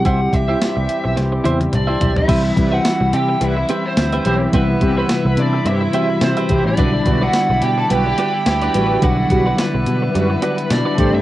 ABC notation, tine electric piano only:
X:1
M:4/4
L:1/8
Q:"Swing 16ths" 1/4=107
K:Clyd
V:1 name="Tine electric piano"
[G,CEG]6- [G,CEG] z | [E,G,CE]8 | [C,E,G,B,E]4- [C,E,G,B,E] [E,G,CF]3 | [D,G,B,D]8 |
[D,F,G,B,D]6- [D,F,G,B,D] [D,G,A,CD] |]